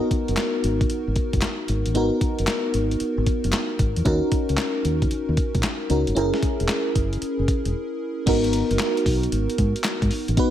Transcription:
Already playing: B3 D#4 F#4 A#4
0.11 kick, closed hi-hat
0.28 F#1, closed hi-hat
0.37 snare, clap, closed hi-hat
0.64 G#1, closed hi-hat
0.81 kick, closed hi-hat
0.90 muted fingered electric bass stroke, closed hi-hat
1.07 G#1
1.16 kick, closed hi-hat
1.33 F#1, kick, closed hi-hat
1.41 snare, clap, closed hi-hat
1.68 G#1, closed hi-hat
1.86 A1, closed hi-hat
1.95 G#1 B3 D#4 F#4 A#4, closed hi-hat
2.21 kick, closed hi-hat
2.39 F#1, closed hi-hat
2.47 snare, clap, closed hi-hat
2.74 G#1, closed hi-hat
2.91 closed hi-hat
3.00 muted fingered electric bass stroke, closed hi-hat
3.18 G#1
3.26 kick, closed hi-hat
3.44 F#1, closed hi-hat
3.52 snare, clap, closed hi-hat
3.79 G#1, kick, closed hi-hat
3.96 E2, closed hi-hat
4.05 D#2 C#4 D#4 F#4 A#4, kick, closed hi-hat
4.32 kick, closed hi-hat
4.49 C#2, closed hi-hat
4.57 snare, clap, closed hi-hat
4.85 D#2, closed hi-hat
5.02 kick, closed hi-hat
5.11 muted fingered electric bass stroke, closed hi-hat
5.29 D#2
5.37 kick, closed hi-hat
5.55 A#1, kick, closed hi-hat
5.63 snare, clap, closed hi-hat
5.90 C#2 C#4 D#4 F#4 A#4, closed hi-hat
6.07 G1, closed hi-hat
6.15 F#1 C#4 E4 G#4 A#4, closed hi-hat
6.34 snare
6.43 kick, closed hi-hat
6.60 E1, closed hi-hat
6.68 snare, clap, closed hi-hat
6.95 F#1, kick, closed hi-hat
7.13 closed hi-hat
7.22 closed hi-hat
7.39 F#1
7.48 kick, closed hi-hat
7.65 E1, closed hi-hat
8.26 G#1 B3 D#4 F#4 A#4, kick, closed hi-hat, crash
8.44 closed hi-hat
8.53 closed hi-hat
8.71 F#1, closed hi-hat
8.79 snare, clap, closed hi-hat
8.97 closed hi-hat
9.06 B1, kick, open hi-hat
9.23 closed hi-hat
9.32 G#1, closed hi-hat
9.50 closed hi-hat
9.58 G#2, kick, closed hi-hat
9.76 closed hi-hat
9.84 snare, clap, closed hi-hat
10.02 G#2, kick, closed hi-hat
10.11 open hi-hat
10.28 A1, closed hi-hat
10.37 B3 D#4 F#4 B4, kick, closed hi-hat

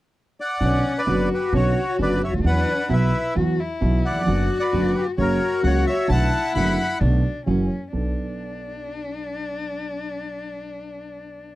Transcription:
0.40 D5 F#5
0.61 B1 B2 D3 B3 C#4 F#4
0.98 B4 D5
1.07 F#1 F#2 D3 B3 C#4 F#4
1.34 G4 B4
1.53 B1 B2 D3 B3 C#4 F#4 C#5
1.99 F#1 F#2 D3 B3 C#4 F#4 B4 D5
2.24 C#5 E5
2.28 C#2
2.33 D2
2.39 D#2
2.44 E2 E3 F#3 B3 D4 F#4 B4 F#5
2.88 B1 B2 E3 F#3 B3 E4 F#4
2.92 B4 E5
3.35 E2 E3 F#3 B3 F#4
3.61 E4
3.81 B1 B2 E3 F#3 B3 F#4
4.05 D5 F#5
4.10 D#2
4.16 E2
4.21 F2
4.27 F#1 F#2 D3 F#3 B3 F#4
4.60 B4 D5
4.73 F#1 F#2 D3 F#3 B3 F#4
4.94 G4 B4
5.18 F#1 F#2 C#3 F#3 A#3 F#4 A#4 C#5
5.63 C#2 C#3 F#3 A#3 F#4 C#5 F#5
5.87 C#5 E5
6.07 B1 B2 D3 A3 B3 E4 F#4 A5
6.12 F#5
6.54 F#1 F#2 D3 A3 B3 F#4 F#5 B5
7.01 B1 B2 D3 A3 B3 D4 F#4
7.46 F#1 F#2 E3 F#3 A#3 C#4 F#4
7.93 B1 B3 D4 A4

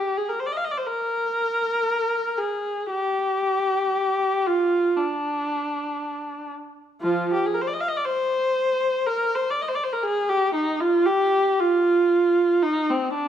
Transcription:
Already playing: G4
0.18 G#4
0.29 A#4
0.40 C5
0.46 D5
0.53 D#5
0.57 F5
0.65 D#5
0.71 D5
0.78 C5
0.87 A#4
2.38 G#4
2.91 G4
4.47 F4
4.97 D4
7.01 F3 F4
7.33 G4
7.46 G#4
7.54 A#4
7.61 C5
7.67 D5
7.73 D#5
7.80 F5
7.88 D#5
7.97 D5
8.05 C5
9.06 A#4
9.35 C5
9.50 D5
9.62 D#5
9.68 C5
9.75 D5
9.84 C5
9.93 A#4
10.04 G#4
10.29 G4
10.54 D#4
10.80 F4
11.05 G4
11.60 F4
12.63 D#4
12.90 C4
13.14 D4

